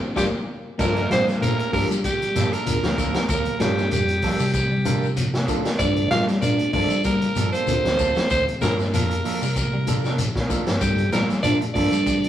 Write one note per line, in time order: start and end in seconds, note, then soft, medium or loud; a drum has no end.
0.00 0.16 C4 loud
0.15 0.29 G1 loud
0.15 0.27 D3 medium
0.15 0.27 F3 medium
0.15 0.27 G3 medium
0.15 0.25 G3 medium
0.15 0.79 A#3 medium
0.15 0.27 D4 medium
0.15 0.27 F4 medium
0.15 0.27 G4 medium
0.15 0.25 G4 medium
0.15 kick medium
0.15 snare medium
0.15 shekere medium
0.78 1.06 G2 medium
0.78 0.98 F3 medium
0.78 1.00 G3 medium
0.78 1.01 A#3 medium
0.78 0.99 A#3 medium
0.78 1.09 A#3 medium
0.78 1.01 D4 medium
0.78 0.99 D4 medium
0.78 1.02 F4 medium
0.78 1.02 A4 medium
0.78 0.99 A4 medium
0.78 1.09 A#4 loud
0.78 kick loud
0.78 crash loud
0.78 shekere medium
0.96 closed hi-hat soft
1.09 1.30 F3 medium
1.09 1.37 G3 medium
1.09 1.30 A#3 medium
1.09 1.27 C4 loud
1.09 1.30 D4 medium
1.09 1.26 C5 loud
1.09 muted clean electric guitar stroke medium
1.09 snare medium
1.09 closed hi-hat medium
1.09 shekere medium
1.27 1.49 F3 medium
1.27 snare soft
1.27 closed hi-hat soft
1.27 shekere soft
1.41 1.68 A#2 loud
1.41 1.53 A#3 medium
1.41 1.72 A#3 medium
1.41 1.53 D4 medium
1.41 1.53 F4 medium
1.41 1.54 A4 medium
1.41 1.71 A#4 loud
1.41 closed hi-hat medium
1.41 shekere loud
1.58 1.80 A3 medium
1.58 closed hi-hat soft
1.72 1.87 G2 medium
1.72 1.93 F3 medium
1.72 2.05 A#3 medium
1.72 1.93 A#3 medium
1.72 1.88 A#3 medium
1.72 2.05 D4 medium
1.72 1.93 D4 medium
1.72 2.06 F4 medium
1.72 2.06 G4 medium
1.72 1.93 A4 medium
1.72 1.88 A#4 loud
1.72 kick medium
1.72 open hi-hat medium
1.72 shekere soft
1.89 2.28 G3 medium
1.89 closed hi-hat soft
1.89 shekere medium
2.04 2.55 G3 medium
2.04 2.26 G3 medium
2.04 2.55 G4 medium
2.04 kick medium
2.04 closed hi-hat medium
2.04 shekere medium
2.22 closed hi-hat soft
2.35 2.50 G2 medium
2.35 2.52 F3 medium
2.35 2.57 G3 medium
2.35 2.52 A#3 medium
2.35 2.52 D4 medium
2.35 2.51 A4 medium
2.35 snare soft
2.35 closed hi-hat soft
2.35 shekere loud
2.52 2.71 A#3 soft
2.52 3.30 A#3 medium
2.52 2.70 D4 soft
2.52 2.70 A4 medium
2.52 3.29 A#4 medium
2.52 closed hi-hat soft
2.52 shekere soft
2.66 2.81 D2 medium
2.66 2.99 A#3 medium
2.66 2.99 D4 medium
2.66 2.99 F4 medium
2.66 3.00 A#4 medium
2.66 closed hi-hat medium
2.66 shekere medium
2.83 2.96 D2 loud
2.83 3.05 F3 medium
2.83 snare medium
2.83 closed hi-hat soft
2.98 3.12 D2 medium
2.98 3.18 F3 medium
2.98 3.18 A#3 medium
2.98 3.18 D4 medium
2.98 3.19 A4 medium
2.98 kick medium
2.98 closed hi-hat soft
2.98 shekere medium
3.14 3.37 D3 medium
3.14 snare medium
3.14 closed hi-hat soft
3.14 shekere soft
3.28 3.44 D2 medium
3.28 3.62 A#3 medium
3.28 3.63 A#4 loud
3.28 kick loud
3.28 closed hi-hat medium
3.28 shekere medium
3.45 muted fingered electric bass stroke soft
3.45 closed hi-hat soft
3.60 3.87 G2 medium
3.60 3.83 D3 medium
3.60 3.80 F3 medium
3.60 3.92 G3 medium
3.60 4.05 A#3 medium
3.60 3.81 A#3 medium
3.60 4.05 D4 medium
3.60 3.81 D4 medium
3.60 4.05 F4 medium
3.60 3.92 G4 medium
3.60 4.05 A4 medium
3.60 3.81 A4 medium
3.60 snare medium
3.60 closed hi-hat medium
3.60 shekere medium
3.77 snare soft
3.77 shekere soft
3.91 4.19 F2 loud
3.91 4.13 F3 medium
3.91 4.51 G3 medium
3.91 4.51 G4 medium
3.91 closed hi-hat medium
3.91 shekere medium
4.08 closed hi-hat soft
4.22 4.37 F3 medium
4.22 4.43 A#3 medium
4.22 4.43 D4 medium
4.22 4.44 A4 medium
4.22 kick medium
4.22 snare soft
4.22 open hi-hat medium
4.22 shekere soft
4.39 5.47 C3 loud
4.39 4.61 G3 medium
4.39 shekere medium
4.53 5.14 G3 medium
4.53 5.13 G4 medium
4.53 kick medium
4.53 closed hi-hat medium
4.53 shekere medium
4.71 4.93 G3 medium
4.85 5.05 F3 medium
4.85 5.08 A#3 medium
4.85 5.05 A#3 medium
4.85 5.08 D4 medium
4.85 5.06 D4 medium
4.85 5.09 F4 medium
4.85 5.06 A4 medium
4.85 5.09 A#4 medium
4.85 closed hi-hat medium
4.85 shekere loud
5.03 shekere soft
5.16 5.39 F3 medium
5.16 closed hi-hat medium
5.16 shekere medium
5.34 snare medium
5.48 5.70 D3 medium
5.48 5.68 F3 medium
5.48 5.60 A#3 medium
5.48 5.68 A#3 medium
5.48 5.60 D4 medium
5.48 5.69 D4 medium
5.48 5.60 F4 medium
5.48 5.60 A4 loud
5.48 5.69 A4 medium
5.48 kick medium
5.48 closed hi-hat medium
5.48 shekere medium
5.65 snare medium
5.65 closed hi-hat soft
5.65 shekere soft
5.79 6.06 G2 medium
5.79 6.01 G3 medium
5.79 6.02 A#3 medium
5.79 6.02 D4 medium
5.79 6.10 D4 medium
5.79 6.03 F4 medium
5.79 6.03 A4 medium
5.79 6.09 D5 loud
5.79 kick loud
5.79 closed hi-hat medium
5.79 shekere medium
5.96 closed hi-hat soft
6.10 6.31 F3 medium
6.10 6.38 G3 loud
6.10 6.31 A#3 medium
6.10 6.31 D4 medium
6.10 6.26 F4 loud
6.10 6.31 A4 medium
6.10 6.25 F5 loud
6.10 snare medium
6.10 closed hi-hat medium
6.10 shekere medium
6.28 6.49 G3 medium
6.28 snare soft
6.28 closed hi-hat soft
6.28 shekere soft
6.42 6.69 A#2 medium
6.42 6.54 A#3 medium
6.42 6.54 D4 medium
6.42 6.72 D4 medium
6.42 6.54 F4 medium
6.42 6.55 A#4 medium
6.42 6.72 D5 loud
6.42 closed hi-hat medium
6.42 shekere loud
6.59 6.80 A3 medium
6.59 closed hi-hat soft
6.73 6.88 G2 loud
6.73 6.93 F3 medium
6.73 7.06 A#3 medium
6.73 6.94 A#3 medium
6.73 7.03 D4 medium
6.73 7.07 D4 medium
6.73 6.94 D4 medium
6.73 7.07 F4 medium
6.73 7.07 A4 loud
6.73 6.94 A4 medium
6.73 7.03 D5 loud
6.73 kick medium
6.73 open hi-hat medium
6.73 shekere soft
6.90 7.30 G3 medium
6.90 closed hi-hat soft
6.90 shekere medium
7.04 7.27 G3 medium
7.04 7.50 A#3 medium
7.04 7.50 A#4 loud
7.04 kick medium
7.04 closed hi-hat medium
7.04 shekere medium
7.21 closed hi-hat soft
7.36 7.51 G2 medium
7.36 7.53 F3 medium
7.36 7.58 G3 medium
7.36 7.52 A#3 medium
7.36 7.52 D4 medium
7.36 7.51 A4 medium
7.36 closed hi-hat soft
7.36 shekere medium
7.52 7.71 A#3 soft
7.52 8.28 C4 medium
7.52 7.71 D4 soft
7.52 7.71 A4 soft
7.52 8.26 C5 medium
7.52 closed hi-hat soft
7.52 shekere soft
7.67 7.82 D2 loud
7.67 8.00 A#3 medium
7.67 8.00 D4 medium
7.67 8.01 F4 medium
7.67 8.01 A4 medium
7.67 closed hi-hat medium
7.67 shekere medium
7.84 7.97 D2 loud
7.84 8.06 F3 medium
7.84 snare medium
7.84 closed hi-hat soft
7.98 8.14 D2 medium
7.98 8.19 F3 medium
7.98 8.19 A#3 medium
7.98 8.19 D4 medium
7.98 8.19 A4 medium
7.98 kick medium
7.98 closed hi-hat soft
7.98 shekere medium
8.15 8.38 D3 medium
8.15 snare medium
8.15 closed hi-hat soft
8.15 shekere soft
8.30 8.45 D2 loud
8.30 8.46 C4 medium
8.30 8.45 C5 loud
8.30 kick loud
8.30 closed hi-hat medium
8.30 shekere medium
8.48 muted fingered electric bass stroke soft
8.48 closed hi-hat soft
8.61 8.89 G2 medium
8.61 8.83 D3 medium
8.61 8.81 F3 medium
8.61 9.06 A#3 medium
8.61 8.82 A#3 medium
8.61 8.77 A#3 medium
8.61 9.06 D4 medium
8.61 8.82 D4 medium
8.61 9.07 F4 medium
8.61 8.82 A4 medium
8.61 8.76 A#4 medium
8.61 9.07 A#4 medium
8.61 snare medium
8.61 closed hi-hat medium
8.61 shekere medium
8.79 snare soft
8.79 shekere soft
8.93 9.21 F2 loud
8.93 9.13 F3 medium
8.93 9.15 F3 medium
8.93 9.13 A#3 medium
8.93 9.53 A#3 medium
8.93 9.14 D4 medium
8.93 9.14 A4 medium
8.93 9.53 A#4 medium
8.93 closed hi-hat medium
8.93 shekere medium
9.11 closed hi-hat soft
9.24 9.44 F3 medium
9.24 9.40 F3 loud
9.24 9.45 A#3 medium
9.24 9.45 D4 medium
9.24 9.45 A4 medium
9.24 open hi-hat medium
9.24 shekere soft
9.42 10.22 C3 loud
9.42 9.63 G3 medium
9.42 shekere medium
9.56 10.16 A#3 medium
9.56 10.16 A#4 medium
9.56 kick medium
9.56 closed hi-hat medium
9.56 shekere medium
9.73 9.95 G3 medium
9.87 10.04 F3 medium
9.87 10.10 A#3 medium
9.87 10.04 A#3 medium
9.87 10.10 D4 medium
9.87 10.03 D4 medium
9.87 10.10 F4 medium
9.87 10.10 A4 medium
9.87 10.03 A4 medium
9.87 closed hi-hat medium
9.87 shekere medium
10.04 10.22 D4 soft
10.04 10.22 A4 soft
10.04 snare soft
10.04 shekere soft
10.18 10.40 F3 medium
10.18 closed hi-hat medium
10.18 shekere medium
10.36 10.49 A#2 medium
10.36 kick medium
10.36 snare medium
10.49 10.66 A2 medium
10.49 10.72 D3 medium
10.49 10.70 F3 medium
10.49 10.61 A#3 medium
10.49 10.70 A#3 medium
10.49 10.62 D4 medium
10.49 10.70 D4 medium
10.49 10.62 F4 medium
10.49 10.70 A4 medium
10.49 10.62 A#4 medium
10.49 kick medium
10.49 closed hi-hat medium
10.49 shekere medium
10.67 10.81 G2 medium
10.67 snare medium
10.67 closed hi-hat soft
10.67 shekere soft
10.81 11.08 G2 medium
10.81 11.03 G3 medium
10.81 11.11 G3 medium
10.81 11.04 A#3 medium
10.81 11.04 D4 medium
10.81 11.05 F4 medium
10.81 11.11 G4 medium
10.81 11.05 A4 medium
10.81 kick loud
10.81 closed hi-hat medium
10.81 shekere medium
10.98 closed hi-hat soft
11.12 11.32 F3 medium
11.12 11.40 G3 loud
11.12 11.26 A#3 medium
11.12 11.33 A#3 medium
11.12 11.33 D4 medium
11.12 11.33 A4 medium
11.12 11.27 A#4 loud
11.12 snare medium
11.12 closed hi-hat medium
11.12 shekere medium
11.29 11.51 F3 medium
11.29 snare soft
11.29 closed hi-hat soft
11.29 shekere soft
11.43 11.71 A#2 medium
11.43 11.64 F3 medium
11.43 11.56 A#3 medium
11.43 11.64 A#3 medium
11.43 11.56 D4 medium
11.43 11.64 D4 medium
11.43 11.59 D4 medium
11.43 11.56 F4 medium
11.43 11.64 A4 medium
11.43 11.56 A#4 medium
11.43 11.58 D5 loud
11.43 closed hi-hat medium
11.43 shekere medium
11.61 11.82 A3 medium
11.61 closed hi-hat soft
11.74 11.90 G2 loud
11.74 11.95 F3 medium
11.74 12.08 A#3 medium
11.74 11.95 A#3 medium
11.74 12.08 D4 medium
11.74 11.95 D4 medium
11.74 12.29 D4 medium
11.74 12.08 F4 medium
11.74 11.95 A4 medium
11.74 12.08 A4 medium
11.74 12.29 D5 loud
11.74 kick medium
11.74 open hi-hat medium
11.74 shekere soft
11.92 12.29 G3 medium
11.92 closed hi-hat soft
11.92 shekere medium
12.06 12.28 G3 medium
12.06 kick medium
12.06 closed hi-hat medium
12.06 shekere medium
12.24 closed hi-hat soft